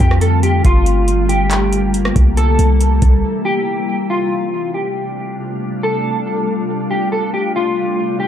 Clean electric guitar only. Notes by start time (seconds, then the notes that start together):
0.00 G4
0.21 A4
0.43 G4
0.65 F4
1.29 G4
2.37 A4
3.45 G4
4.10 F4
4.74 G4
5.83 A4
6.91 G4
7.12 A4
7.34 G4
7.56 F4
8.20 G4